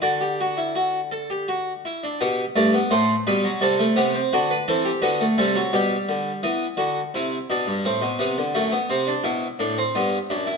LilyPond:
<<
  \new Staff \with { instrumentName = "Harpsichord" } { \time 3/4 \key g \major \tempo 4 = 85 << { d''2~ d''8 r8 | g'8 d''8 c''8 b'8 a'8 g'8 | fis'16 b'16 a'16 g'16 fis'8 a'8 g'4 | r2. |
r2. | } \\ { fis'16 g'16 fis'16 e'16 fis'8 a'16 g'16 fis'8 e'16 d'16 | b8 a16 b16 a8 g16 fis16 g16 a16 b16 c'16 | d'8 c'8 b16 a16 g16 fis16 g4 | b8 fis'8 e'8 d'8 c'8 b8 |
a16 b16 c'16 d'16 e'8 d'16 c'16 b8 d'16 e'16 | } >> }
  \new Staff \with { instrumentName = "Harpsichord" } { \clef bass \time 3/4 \key g \major d2~ d8 r8 | b,8 g,8 a,8 b,8 c8 c8 | d8 e8 d8 c8 b,8 d8 | e8 d8 c8 b,16 g,16 a,16 b,16 c16 d16 |
fis,8 c8 b,8 a,8 g,8 fis,8 | }
>>